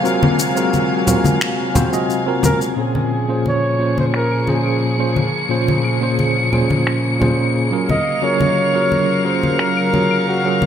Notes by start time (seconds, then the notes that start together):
Already playing: C3 F#3 G#3 A#3 F5 G#5
0.03 C4 F4 F#4 A#4, shaker
0.23 high conga
0.39 shaker
0.55 C4 F4 F#4 A#4, shaker
0.73 high conga, shaker
1.06 C4 F4 F#4 A#4, low conga, shaker
1.24 high conga, shaker
1.41 finger snap, shaker
1.74 C4 F4 F#4 C5, high conga, low conga, shaker
1.92 C4 F4 F#4 D#5, shaker
2.10 shaker
2.26 C4 F4 F#4 A#4
2.43 A#4, high conga, low conga, shaker
2.61 shaker
2.76 A#2 C#3 F3 A#3 C4 C#4 F4 G#4 C#7
2.95 high conga
3.28 A#2 C#4 F4 G#4 C5
3.46 C#5, high conga
3.79 A#2 C#4 F4 G#4 C5
3.98 C5, high conga
4.14 A#4, finger snap
4.31 claves
4.47 A#2 C#4 F4 G#4 C5, high conga
4.66 claves
4.98 A#2 C#4 F4 G#4 C5
5.16 high conga
5.49 A#2 C#4 F4 G#4 C5
5.68 high conga
5.84 claves
6.01 A#2 C#4 F4 G#4 C5
6.19 high conga
6.52 A#2 C#4 F4 G#4 C5, low conga, claves
6.70 high conga
6.87 finger snap
7.19 A#2 C#4 F4 G#4 C5, high conga, low conga
7.71 F#3 C#4 F4 G#4 A#4
7.89 C#3 F#3 A#4 D#5 F5, high conga, low conga
8.22 F#3 C#4 F4 G#4 A#4 C#5
8.40 high conga
8.73 F#3 C#4 F4 G#4 A#4
8.92 high conga
9.24 F#3 C#4 F4 G#4 A#4 C5
9.43 high conga
9.59 A#4, finger snap
9.77 claves
9.93 F#3 C#4 F4 G#4 A#4, high conga
10.11 claves
10.29 F#4
10.44 F#3 C#4 F4 G#4 A#4
10.62 high conga